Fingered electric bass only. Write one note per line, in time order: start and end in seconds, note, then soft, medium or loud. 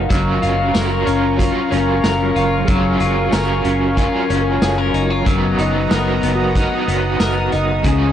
0.11 0.39 F#1 loud
0.43 0.71 F#1 loud
0.75 1.04 F#1 loud
1.07 1.50 F#1 medium
1.72 2.00 F#1 medium
2.04 2.32 F#1 medium
2.36 2.65 F#1 medium
2.68 2.97 F#1 loud
3.01 3.29 F#1 loud
3.33 3.61 F#1 loud
3.65 4.08 F#1 medium
4.30 4.58 F#1 medium
4.62 4.90 F#1 loud
4.94 5.22 F#1 medium
5.26 5.55 F#1 loud
5.58 5.87 F#1 medium
5.91 6.19 F#1 loud
6.23 6.66 F#1 loud
6.88 7.16 F#1 medium
7.20 7.49 F#1 medium
7.53 7.81 F#1 medium
7.84 8.12 C#2 loud